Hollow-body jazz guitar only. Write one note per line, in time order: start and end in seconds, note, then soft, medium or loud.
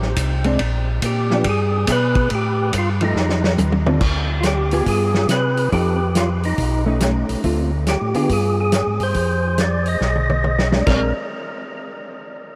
0.44 0.58 G#3 medium
0.44 0.58 C4 medium
0.44 0.58 D4 medium
1.31 1.44 F3 medium
1.31 1.44 B3 medium
1.31 1.45 D4 medium
3.01 3.14 F3 medium
3.01 3.15 A3 medium
3.01 3.15 D#4 medium
3.01 3.15 G4 medium
3.88 4.00 D3 medium
3.88 4.01 C4 medium
3.88 4.01 F4 medium
3.88 4.01 A4 medium
4.73 5.27 B3 medium
4.73 5.27 F4 medium
4.73 5.28 G#4 medium
5.72 5.98 F3 medium
5.72 5.98 C4 medium
5.72 5.98 D#4 medium
5.72 5.98 A4 medium
6.86 7.41 A3 medium
6.86 7.41 C#4 medium
6.86 7.42 D#4 medium
7.44 7.69 D3 medium
7.44 7.69 A3 medium
7.44 7.70 C4 medium
7.44 7.70 F4 medium
8.15 8.70 B3 medium
8.15 8.70 F4 medium
8.15 8.70 G#4 medium
10.72 10.85 G#3 medium
10.72 10.86 C4 medium
10.72 10.86 D4 medium
10.87 11.12 G#3 medium
10.87 11.12 C4 medium
10.87 11.12 D4 medium